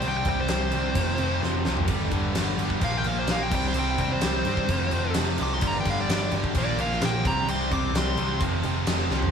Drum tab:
CC |x-x-x-x-x-x-----|x-x-x-x-x-x-x-x-|x-x-x-x-x-x-x-x-|x-x-x-x-x-x-x-x-|
SD |----o-------o-o-|----o-------o---|----o-------o---|----o------oo---|
FT |---------------o|----------------|----------------|----------------|
BD |--o-----o-------|o-o----oo-----o-|--o----oo-------|o-o----oo-----o-|

CC |x-x-x-x-x-x-x---|
SD |----o-------o-o-|
FT |---------------o|
BD |--o-----o-------|